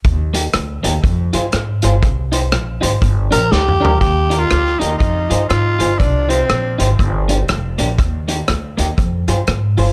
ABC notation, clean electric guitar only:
X:1
M:4/4
L:1/8
Q:"Swing" 1/4=121
K:Eb
V:1 name="Clean electric guitar"
z [B,EG] z [B,EG] z [FAc] z [FAc] | z [EGc] z [EGc] z [DGB] z [DGB] | z [EGB] z [EGB] z [FAc] z [FAc] | z [EGc] z [EGc] z [B,DG] z [B,DG] |
z [B,EG] z [B,EG] z [FAc] z [FAc] |]